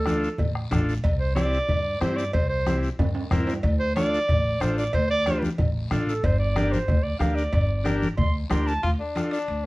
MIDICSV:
0, 0, Header, 1, 7, 480
1, 0, Start_track
1, 0, Key_signature, -1, "minor"
1, 0, Tempo, 325027
1, 1534, Time_signature, 4, 2, 24, 8
1, 14267, End_track
2, 0, Start_track
2, 0, Title_t, "Clarinet"
2, 0, Program_c, 0, 71
2, 0, Note_on_c, 0, 69, 93
2, 778, Note_off_c, 0, 69, 0
2, 1770, Note_on_c, 0, 72, 88
2, 1990, Note_off_c, 0, 72, 0
2, 1999, Note_on_c, 0, 74, 97
2, 2938, Note_off_c, 0, 74, 0
2, 2966, Note_on_c, 0, 72, 82
2, 3197, Note_on_c, 0, 74, 75
2, 3219, Note_off_c, 0, 72, 0
2, 3435, Note_off_c, 0, 74, 0
2, 3443, Note_on_c, 0, 72, 84
2, 3666, Note_off_c, 0, 72, 0
2, 3675, Note_on_c, 0, 72, 99
2, 4150, Note_off_c, 0, 72, 0
2, 5609, Note_on_c, 0, 72, 105
2, 5835, Note_off_c, 0, 72, 0
2, 5844, Note_on_c, 0, 74, 110
2, 6807, Note_on_c, 0, 72, 87
2, 6829, Note_off_c, 0, 74, 0
2, 7043, Note_off_c, 0, 72, 0
2, 7058, Note_on_c, 0, 74, 83
2, 7283, Note_off_c, 0, 74, 0
2, 7292, Note_on_c, 0, 72, 103
2, 7526, Note_off_c, 0, 72, 0
2, 7537, Note_on_c, 0, 74, 103
2, 8001, Note_off_c, 0, 74, 0
2, 8980, Note_on_c, 0, 69, 86
2, 9225, Note_on_c, 0, 72, 97
2, 9247, Note_off_c, 0, 69, 0
2, 9432, Note_off_c, 0, 72, 0
2, 9440, Note_on_c, 0, 74, 90
2, 9919, Note_on_c, 0, 72, 95
2, 9941, Note_off_c, 0, 74, 0
2, 10385, Note_on_c, 0, 74, 83
2, 10407, Note_off_c, 0, 72, 0
2, 10609, Note_off_c, 0, 74, 0
2, 10618, Note_on_c, 0, 77, 84
2, 10854, Note_on_c, 0, 74, 93
2, 10876, Note_off_c, 0, 77, 0
2, 11803, Note_off_c, 0, 74, 0
2, 12065, Note_on_c, 0, 84, 89
2, 12311, Note_off_c, 0, 84, 0
2, 12564, Note_on_c, 0, 84, 75
2, 12801, Note_on_c, 0, 81, 88
2, 12823, Note_off_c, 0, 84, 0
2, 13039, Note_off_c, 0, 81, 0
2, 14267, End_track
3, 0, Start_track
3, 0, Title_t, "Transistor combo organ"
3, 0, Program_c, 1, 18
3, 83, Note_on_c, 1, 62, 78
3, 87, Note_on_c, 1, 65, 78
3, 101, Note_on_c, 1, 69, 99
3, 425, Note_off_c, 1, 62, 0
3, 427, Note_off_c, 1, 65, 0
3, 434, Note_off_c, 1, 69, 0
3, 1046, Note_on_c, 1, 62, 88
3, 1053, Note_on_c, 1, 69, 88
3, 1054, Note_on_c, 1, 65, 80
3, 1386, Note_off_c, 1, 62, 0
3, 1390, Note_off_c, 1, 65, 0
3, 1390, Note_off_c, 1, 69, 0
3, 1996, Note_on_c, 1, 60, 76
3, 2002, Note_on_c, 1, 64, 73
3, 2005, Note_on_c, 1, 67, 76
3, 2341, Note_off_c, 1, 60, 0
3, 2344, Note_off_c, 1, 64, 0
3, 2346, Note_off_c, 1, 67, 0
3, 2968, Note_on_c, 1, 60, 79
3, 2978, Note_on_c, 1, 64, 65
3, 2979, Note_on_c, 1, 67, 75
3, 3307, Note_off_c, 1, 60, 0
3, 3312, Note_off_c, 1, 64, 0
3, 3313, Note_off_c, 1, 67, 0
3, 3942, Note_on_c, 1, 60, 72
3, 3946, Note_on_c, 1, 64, 65
3, 3952, Note_on_c, 1, 67, 74
3, 4274, Note_off_c, 1, 60, 0
3, 4276, Note_off_c, 1, 64, 0
3, 4279, Note_off_c, 1, 67, 0
3, 4890, Note_on_c, 1, 60, 89
3, 4897, Note_on_c, 1, 64, 81
3, 4901, Note_on_c, 1, 70, 91
3, 5228, Note_off_c, 1, 60, 0
3, 5232, Note_off_c, 1, 64, 0
3, 5234, Note_off_c, 1, 70, 0
3, 5855, Note_on_c, 1, 62, 75
3, 5864, Note_on_c, 1, 65, 71
3, 5875, Note_on_c, 1, 69, 81
3, 6191, Note_off_c, 1, 62, 0
3, 6195, Note_off_c, 1, 65, 0
3, 6200, Note_off_c, 1, 69, 0
3, 6806, Note_on_c, 1, 62, 69
3, 6821, Note_on_c, 1, 65, 70
3, 6821, Note_on_c, 1, 69, 78
3, 7146, Note_off_c, 1, 62, 0
3, 7153, Note_off_c, 1, 65, 0
3, 7153, Note_off_c, 1, 69, 0
3, 7783, Note_on_c, 1, 65, 61
3, 7788, Note_on_c, 1, 62, 75
3, 7799, Note_on_c, 1, 67, 74
3, 8114, Note_off_c, 1, 65, 0
3, 8117, Note_off_c, 1, 62, 0
3, 8122, Note_off_c, 1, 67, 0
3, 8730, Note_on_c, 1, 62, 78
3, 8732, Note_on_c, 1, 65, 87
3, 8740, Note_on_c, 1, 69, 87
3, 9068, Note_off_c, 1, 62, 0
3, 9068, Note_off_c, 1, 65, 0
3, 9072, Note_off_c, 1, 69, 0
3, 9684, Note_on_c, 1, 62, 79
3, 9686, Note_on_c, 1, 67, 68
3, 9690, Note_on_c, 1, 70, 84
3, 10024, Note_off_c, 1, 62, 0
3, 10025, Note_off_c, 1, 67, 0
3, 10027, Note_off_c, 1, 70, 0
3, 10625, Note_on_c, 1, 62, 80
3, 10633, Note_on_c, 1, 67, 67
3, 10640, Note_on_c, 1, 70, 75
3, 10974, Note_off_c, 1, 62, 0
3, 10978, Note_off_c, 1, 67, 0
3, 10982, Note_off_c, 1, 70, 0
3, 11584, Note_on_c, 1, 62, 87
3, 11593, Note_on_c, 1, 67, 82
3, 11599, Note_on_c, 1, 70, 103
3, 11933, Note_off_c, 1, 62, 0
3, 11938, Note_off_c, 1, 67, 0
3, 11941, Note_off_c, 1, 70, 0
3, 12547, Note_on_c, 1, 62, 77
3, 12554, Note_on_c, 1, 67, 74
3, 12558, Note_on_c, 1, 70, 74
3, 12895, Note_off_c, 1, 62, 0
3, 12899, Note_off_c, 1, 67, 0
3, 12901, Note_off_c, 1, 70, 0
3, 13516, Note_on_c, 1, 62, 64
3, 13524, Note_on_c, 1, 65, 56
3, 13532, Note_on_c, 1, 69, 75
3, 13861, Note_off_c, 1, 62, 0
3, 13864, Note_off_c, 1, 65, 0
3, 13868, Note_off_c, 1, 69, 0
3, 14267, End_track
4, 0, Start_track
4, 0, Title_t, "Tenor saxophone"
4, 0, Program_c, 2, 66
4, 13039, Note_on_c, 2, 65, 99
4, 13150, Note_off_c, 2, 65, 0
4, 13283, Note_on_c, 2, 62, 82
4, 13734, Note_off_c, 2, 62, 0
4, 13761, Note_on_c, 2, 62, 103
4, 14267, Note_off_c, 2, 62, 0
4, 14267, End_track
5, 0, Start_track
5, 0, Title_t, "Upright bass"
5, 0, Program_c, 3, 32
5, 0, Note_on_c, 3, 38, 102
5, 382, Note_off_c, 3, 38, 0
5, 573, Note_on_c, 3, 33, 88
5, 958, Note_off_c, 3, 33, 0
5, 1060, Note_on_c, 3, 33, 102
5, 1442, Note_off_c, 3, 33, 0
5, 1538, Note_on_c, 3, 36, 111
5, 2305, Note_off_c, 3, 36, 0
5, 2496, Note_on_c, 3, 43, 82
5, 2879, Note_off_c, 3, 43, 0
5, 2976, Note_on_c, 3, 43, 93
5, 3360, Note_off_c, 3, 43, 0
5, 3457, Note_on_c, 3, 36, 108
5, 4224, Note_off_c, 3, 36, 0
5, 4418, Note_on_c, 3, 43, 88
5, 4800, Note_off_c, 3, 43, 0
5, 4896, Note_on_c, 3, 43, 95
5, 5280, Note_off_c, 3, 43, 0
5, 5372, Note_on_c, 3, 38, 108
5, 6141, Note_off_c, 3, 38, 0
5, 6335, Note_on_c, 3, 33, 94
5, 6719, Note_off_c, 3, 33, 0
5, 6798, Note_on_c, 3, 33, 98
5, 7188, Note_off_c, 3, 33, 0
5, 7292, Note_on_c, 3, 38, 105
5, 8061, Note_off_c, 3, 38, 0
5, 8250, Note_on_c, 3, 33, 95
5, 8635, Note_off_c, 3, 33, 0
5, 8730, Note_on_c, 3, 33, 96
5, 9115, Note_off_c, 3, 33, 0
5, 9211, Note_on_c, 3, 31, 111
5, 9979, Note_off_c, 3, 31, 0
5, 10162, Note_on_c, 3, 38, 94
5, 10550, Note_off_c, 3, 38, 0
5, 10634, Note_on_c, 3, 38, 91
5, 11025, Note_off_c, 3, 38, 0
5, 11120, Note_on_c, 3, 31, 109
5, 11893, Note_off_c, 3, 31, 0
5, 12080, Note_on_c, 3, 38, 93
5, 12469, Note_off_c, 3, 38, 0
5, 12561, Note_on_c, 3, 38, 98
5, 12950, Note_off_c, 3, 38, 0
5, 13053, Note_on_c, 3, 38, 88
5, 13245, Note_off_c, 3, 38, 0
5, 14002, Note_on_c, 3, 38, 81
5, 14267, Note_off_c, 3, 38, 0
5, 14267, End_track
6, 0, Start_track
6, 0, Title_t, "Two-headed folk drums"
6, 83, Note_on_c, 9, 37, 79
6, 230, Note_off_c, 9, 37, 0
6, 577, Note_on_c, 9, 36, 81
6, 725, Note_off_c, 9, 36, 0
6, 816, Note_on_c, 9, 37, 82
6, 964, Note_off_c, 9, 37, 0
6, 1064, Note_on_c, 9, 36, 75
6, 1070, Note_on_c, 9, 37, 88
6, 1211, Note_off_c, 9, 36, 0
6, 1218, Note_off_c, 9, 37, 0
6, 1540, Note_on_c, 9, 36, 78
6, 1688, Note_off_c, 9, 36, 0
6, 2022, Note_on_c, 9, 37, 81
6, 2169, Note_off_c, 9, 37, 0
6, 2500, Note_on_c, 9, 36, 78
6, 2647, Note_off_c, 9, 36, 0
6, 2975, Note_on_c, 9, 37, 88
6, 3123, Note_off_c, 9, 37, 0
6, 3460, Note_on_c, 9, 36, 85
6, 3607, Note_off_c, 9, 36, 0
6, 3939, Note_on_c, 9, 37, 76
6, 4086, Note_off_c, 9, 37, 0
6, 4421, Note_on_c, 9, 36, 88
6, 4568, Note_off_c, 9, 36, 0
6, 4891, Note_on_c, 9, 37, 87
6, 4897, Note_on_c, 9, 36, 76
6, 5038, Note_off_c, 9, 37, 0
6, 5045, Note_off_c, 9, 36, 0
6, 5377, Note_on_c, 9, 36, 89
6, 5524, Note_off_c, 9, 36, 0
6, 5861, Note_on_c, 9, 37, 78
6, 6009, Note_off_c, 9, 37, 0
6, 6336, Note_on_c, 9, 36, 89
6, 6483, Note_off_c, 9, 36, 0
6, 6810, Note_on_c, 9, 37, 89
6, 6958, Note_off_c, 9, 37, 0
6, 7293, Note_on_c, 9, 36, 77
6, 7441, Note_off_c, 9, 36, 0
6, 7767, Note_on_c, 9, 37, 72
6, 7915, Note_off_c, 9, 37, 0
6, 8254, Note_on_c, 9, 36, 93
6, 8402, Note_off_c, 9, 36, 0
6, 8727, Note_on_c, 9, 37, 85
6, 8875, Note_off_c, 9, 37, 0
6, 9210, Note_on_c, 9, 36, 86
6, 9358, Note_off_c, 9, 36, 0
6, 9689, Note_on_c, 9, 37, 88
6, 9837, Note_off_c, 9, 37, 0
6, 10165, Note_on_c, 9, 36, 87
6, 10312, Note_off_c, 9, 36, 0
6, 10645, Note_on_c, 9, 37, 83
6, 10793, Note_off_c, 9, 37, 0
6, 11124, Note_on_c, 9, 36, 87
6, 11271, Note_off_c, 9, 36, 0
6, 11607, Note_on_c, 9, 37, 78
6, 11755, Note_off_c, 9, 37, 0
6, 12085, Note_on_c, 9, 36, 86
6, 12233, Note_off_c, 9, 36, 0
6, 12564, Note_on_c, 9, 37, 96
6, 12712, Note_off_c, 9, 37, 0
6, 13054, Note_on_c, 9, 36, 83
6, 13202, Note_off_c, 9, 36, 0
6, 13541, Note_on_c, 9, 37, 71
6, 13688, Note_off_c, 9, 37, 0
6, 14267, End_track
7, 0, Start_track
7, 0, Title_t, "Drums"
7, 96, Note_on_c, 9, 56, 64
7, 103, Note_on_c, 9, 63, 84
7, 111, Note_on_c, 9, 73, 75
7, 243, Note_off_c, 9, 56, 0
7, 250, Note_off_c, 9, 63, 0
7, 258, Note_off_c, 9, 73, 0
7, 346, Note_on_c, 9, 73, 66
7, 494, Note_off_c, 9, 73, 0
7, 566, Note_on_c, 9, 64, 91
7, 578, Note_on_c, 9, 56, 79
7, 593, Note_on_c, 9, 74, 75
7, 714, Note_off_c, 9, 64, 0
7, 726, Note_off_c, 9, 56, 0
7, 741, Note_off_c, 9, 74, 0
7, 1050, Note_on_c, 9, 56, 75
7, 1058, Note_on_c, 9, 63, 83
7, 1064, Note_on_c, 9, 73, 76
7, 1197, Note_off_c, 9, 56, 0
7, 1205, Note_off_c, 9, 63, 0
7, 1212, Note_off_c, 9, 73, 0
7, 1312, Note_on_c, 9, 73, 66
7, 1460, Note_off_c, 9, 73, 0
7, 1531, Note_on_c, 9, 56, 112
7, 1562, Note_on_c, 9, 74, 74
7, 1679, Note_off_c, 9, 56, 0
7, 1710, Note_off_c, 9, 74, 0
7, 2014, Note_on_c, 9, 63, 90
7, 2024, Note_on_c, 9, 73, 75
7, 2027, Note_on_c, 9, 56, 65
7, 2162, Note_off_c, 9, 63, 0
7, 2172, Note_off_c, 9, 73, 0
7, 2174, Note_off_c, 9, 56, 0
7, 2264, Note_on_c, 9, 73, 58
7, 2411, Note_off_c, 9, 73, 0
7, 2490, Note_on_c, 9, 64, 84
7, 2500, Note_on_c, 9, 56, 83
7, 2505, Note_on_c, 9, 74, 76
7, 2637, Note_off_c, 9, 64, 0
7, 2648, Note_off_c, 9, 56, 0
7, 2652, Note_off_c, 9, 74, 0
7, 2978, Note_on_c, 9, 56, 71
7, 2978, Note_on_c, 9, 66, 65
7, 2983, Note_on_c, 9, 63, 72
7, 2986, Note_on_c, 9, 73, 67
7, 3126, Note_off_c, 9, 56, 0
7, 3126, Note_off_c, 9, 66, 0
7, 3131, Note_off_c, 9, 63, 0
7, 3134, Note_off_c, 9, 73, 0
7, 3225, Note_on_c, 9, 73, 73
7, 3373, Note_off_c, 9, 73, 0
7, 3446, Note_on_c, 9, 56, 101
7, 3464, Note_on_c, 9, 74, 64
7, 3594, Note_off_c, 9, 56, 0
7, 3612, Note_off_c, 9, 74, 0
7, 3935, Note_on_c, 9, 56, 60
7, 3938, Note_on_c, 9, 63, 91
7, 3945, Note_on_c, 9, 73, 75
7, 4083, Note_off_c, 9, 56, 0
7, 4086, Note_off_c, 9, 63, 0
7, 4093, Note_off_c, 9, 73, 0
7, 4182, Note_on_c, 9, 73, 62
7, 4330, Note_off_c, 9, 73, 0
7, 4418, Note_on_c, 9, 56, 78
7, 4418, Note_on_c, 9, 65, 91
7, 4421, Note_on_c, 9, 74, 70
7, 4429, Note_on_c, 9, 64, 86
7, 4566, Note_off_c, 9, 56, 0
7, 4566, Note_off_c, 9, 65, 0
7, 4568, Note_off_c, 9, 74, 0
7, 4577, Note_off_c, 9, 64, 0
7, 4650, Note_on_c, 9, 65, 82
7, 4798, Note_off_c, 9, 65, 0
7, 4888, Note_on_c, 9, 63, 82
7, 4888, Note_on_c, 9, 64, 69
7, 4897, Note_on_c, 9, 56, 66
7, 4897, Note_on_c, 9, 66, 78
7, 4906, Note_on_c, 9, 73, 69
7, 5036, Note_off_c, 9, 63, 0
7, 5036, Note_off_c, 9, 64, 0
7, 5045, Note_off_c, 9, 56, 0
7, 5045, Note_off_c, 9, 66, 0
7, 5053, Note_off_c, 9, 73, 0
7, 5131, Note_on_c, 9, 66, 100
7, 5153, Note_on_c, 9, 73, 73
7, 5279, Note_off_c, 9, 66, 0
7, 5301, Note_off_c, 9, 73, 0
7, 5367, Note_on_c, 9, 56, 116
7, 5392, Note_on_c, 9, 74, 67
7, 5515, Note_off_c, 9, 56, 0
7, 5539, Note_off_c, 9, 74, 0
7, 5847, Note_on_c, 9, 56, 67
7, 5856, Note_on_c, 9, 63, 96
7, 5869, Note_on_c, 9, 73, 76
7, 5995, Note_off_c, 9, 56, 0
7, 6003, Note_off_c, 9, 63, 0
7, 6016, Note_off_c, 9, 73, 0
7, 6114, Note_on_c, 9, 73, 68
7, 6262, Note_off_c, 9, 73, 0
7, 6326, Note_on_c, 9, 56, 78
7, 6351, Note_on_c, 9, 64, 81
7, 6355, Note_on_c, 9, 74, 74
7, 6473, Note_off_c, 9, 56, 0
7, 6498, Note_off_c, 9, 64, 0
7, 6502, Note_off_c, 9, 74, 0
7, 6812, Note_on_c, 9, 56, 68
7, 6817, Note_on_c, 9, 73, 78
7, 6822, Note_on_c, 9, 63, 80
7, 6960, Note_off_c, 9, 56, 0
7, 6964, Note_off_c, 9, 73, 0
7, 6969, Note_off_c, 9, 63, 0
7, 7062, Note_on_c, 9, 73, 66
7, 7210, Note_off_c, 9, 73, 0
7, 7280, Note_on_c, 9, 56, 113
7, 7301, Note_on_c, 9, 64, 74
7, 7307, Note_on_c, 9, 74, 71
7, 7428, Note_off_c, 9, 56, 0
7, 7449, Note_off_c, 9, 64, 0
7, 7455, Note_off_c, 9, 74, 0
7, 7773, Note_on_c, 9, 56, 72
7, 7781, Note_on_c, 9, 73, 70
7, 7782, Note_on_c, 9, 63, 95
7, 7921, Note_off_c, 9, 56, 0
7, 7929, Note_off_c, 9, 73, 0
7, 7930, Note_off_c, 9, 63, 0
7, 8010, Note_on_c, 9, 63, 76
7, 8037, Note_on_c, 9, 73, 65
7, 8158, Note_off_c, 9, 63, 0
7, 8184, Note_off_c, 9, 73, 0
7, 8244, Note_on_c, 9, 56, 89
7, 8247, Note_on_c, 9, 64, 94
7, 8272, Note_on_c, 9, 74, 76
7, 8391, Note_off_c, 9, 56, 0
7, 8395, Note_off_c, 9, 64, 0
7, 8420, Note_off_c, 9, 74, 0
7, 8729, Note_on_c, 9, 56, 71
7, 8736, Note_on_c, 9, 63, 84
7, 8736, Note_on_c, 9, 64, 74
7, 8748, Note_on_c, 9, 73, 73
7, 8877, Note_off_c, 9, 56, 0
7, 8884, Note_off_c, 9, 63, 0
7, 8884, Note_off_c, 9, 64, 0
7, 8895, Note_off_c, 9, 73, 0
7, 8993, Note_on_c, 9, 73, 70
7, 9140, Note_off_c, 9, 73, 0
7, 9214, Note_on_c, 9, 56, 111
7, 9229, Note_on_c, 9, 74, 71
7, 9361, Note_off_c, 9, 56, 0
7, 9377, Note_off_c, 9, 74, 0
7, 9690, Note_on_c, 9, 56, 69
7, 9694, Note_on_c, 9, 63, 90
7, 9702, Note_on_c, 9, 73, 75
7, 9837, Note_off_c, 9, 56, 0
7, 9841, Note_off_c, 9, 63, 0
7, 9850, Note_off_c, 9, 73, 0
7, 9944, Note_on_c, 9, 63, 81
7, 9945, Note_on_c, 9, 73, 68
7, 10091, Note_off_c, 9, 63, 0
7, 10092, Note_off_c, 9, 73, 0
7, 10163, Note_on_c, 9, 56, 81
7, 10183, Note_on_c, 9, 64, 95
7, 10183, Note_on_c, 9, 74, 76
7, 10310, Note_off_c, 9, 56, 0
7, 10330, Note_off_c, 9, 74, 0
7, 10331, Note_off_c, 9, 64, 0
7, 10642, Note_on_c, 9, 56, 65
7, 10656, Note_on_c, 9, 73, 79
7, 10663, Note_on_c, 9, 63, 89
7, 10789, Note_off_c, 9, 56, 0
7, 10804, Note_off_c, 9, 73, 0
7, 10811, Note_off_c, 9, 63, 0
7, 10893, Note_on_c, 9, 73, 73
7, 11041, Note_off_c, 9, 73, 0
7, 11118, Note_on_c, 9, 56, 102
7, 11135, Note_on_c, 9, 74, 68
7, 11265, Note_off_c, 9, 56, 0
7, 11282, Note_off_c, 9, 74, 0
7, 11598, Note_on_c, 9, 56, 73
7, 11607, Note_on_c, 9, 73, 72
7, 11609, Note_on_c, 9, 63, 82
7, 11745, Note_off_c, 9, 56, 0
7, 11755, Note_off_c, 9, 73, 0
7, 11757, Note_off_c, 9, 63, 0
7, 11850, Note_on_c, 9, 73, 65
7, 11855, Note_on_c, 9, 63, 73
7, 11997, Note_off_c, 9, 73, 0
7, 12003, Note_off_c, 9, 63, 0
7, 12073, Note_on_c, 9, 56, 87
7, 12079, Note_on_c, 9, 64, 85
7, 12092, Note_on_c, 9, 74, 72
7, 12220, Note_off_c, 9, 56, 0
7, 12227, Note_off_c, 9, 64, 0
7, 12240, Note_off_c, 9, 74, 0
7, 12557, Note_on_c, 9, 56, 72
7, 12557, Note_on_c, 9, 66, 72
7, 12559, Note_on_c, 9, 63, 82
7, 12568, Note_on_c, 9, 73, 76
7, 12704, Note_off_c, 9, 56, 0
7, 12704, Note_off_c, 9, 66, 0
7, 12707, Note_off_c, 9, 63, 0
7, 12716, Note_off_c, 9, 73, 0
7, 12813, Note_on_c, 9, 73, 74
7, 12960, Note_off_c, 9, 73, 0
7, 13043, Note_on_c, 9, 65, 72
7, 13056, Note_on_c, 9, 74, 64
7, 13191, Note_off_c, 9, 65, 0
7, 13204, Note_off_c, 9, 74, 0
7, 13520, Note_on_c, 9, 65, 61
7, 13526, Note_on_c, 9, 63, 84
7, 13537, Note_on_c, 9, 73, 69
7, 13668, Note_off_c, 9, 65, 0
7, 13674, Note_off_c, 9, 63, 0
7, 13685, Note_off_c, 9, 73, 0
7, 13752, Note_on_c, 9, 65, 64
7, 13783, Note_on_c, 9, 73, 64
7, 13900, Note_off_c, 9, 65, 0
7, 13931, Note_off_c, 9, 73, 0
7, 14003, Note_on_c, 9, 65, 56
7, 14032, Note_on_c, 9, 74, 65
7, 14151, Note_off_c, 9, 65, 0
7, 14179, Note_off_c, 9, 74, 0
7, 14267, End_track
0, 0, End_of_file